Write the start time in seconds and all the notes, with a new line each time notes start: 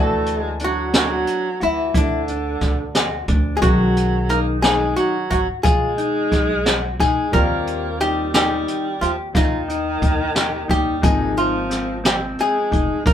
Already playing: D2 E3 A3 D4 F#4 A4
0.26 closed hi-hat
0.39 G#3 G#4
0.60 F#3 D4, closed hi-hat
0.64 F#4
0.94 D4, snare, closed hi-hat
0.98 F#3 F#4
1.27 closed hi-hat
1.60 D2 E4 F#4, closed hi-hat
1.65 E3
1.94 D2 D3 D4 E4, kick, closed hi-hat
2.28 D4, closed hi-hat
2.61 D2, kick, snare, closed hi-hat
2.95 F#4, snare, closed hi-hat
3.28 D2 D4, kick, closed hi-hat
3.57 D#3 G#3 G#4
3.61 B1 G#3 C#4 F#4, kick, closed hi-hat
3.65 F#3
3.97 closed hi-hat
4.29 A#3 D#4 A#4, closed hi-hat
4.62 G#3 D#4 G#4, snare, closed hi-hat
4.96 F#3 F#4, closed hi-hat
5.30 G#1 F#3 F#4, kick, closed hi-hat
5.63 B2 G#3 F4 G#4, kick, closed hi-hat
5.98 D#4, closed hi-hat
6.32 B1, kick, snare, closed hi-hat
6.66 F#4, snare, closed hi-hat
7.00 B2 G#3 D#4 G#4, kick, snare, closed hi-hat
7.32 D#2 D#3 G3 A#3 C4 F4 G4 A#4, kick, closed hi-hat
7.67 closed hi-hat
8.00 G3 D#4 G4, closed hi-hat
8.34 G3 D#4 G4, snare, closed hi-hat
8.68 closed hi-hat
9.01 D#2 F3 F4 G4, closed hi-hat
9.35 D#2 D#3 D#4 F4, kick, snare, closed hi-hat
9.68 D#4, closed hi-hat
10.02 D#2, kick, closed hi-hat
10.35 G4, snare, closed hi-hat
10.68 D#2 G3 D#4 G4, kick, closed hi-hat
11.02 G#1 C3 F3 G#3 A#3 D#4 G#4, kick, closed hi-hat
11.37 F3 F4, closed hi-hat
11.70 C4, snare, closed hi-hat
12.04 G3 C4 G4, snare, closed hi-hat
12.39 G#3 G#4, closed hi-hat
12.71 F1 D#4, kick, closed hi-hat
13.05 G#2 A#3 D4 A#4, kick, closed hi-hat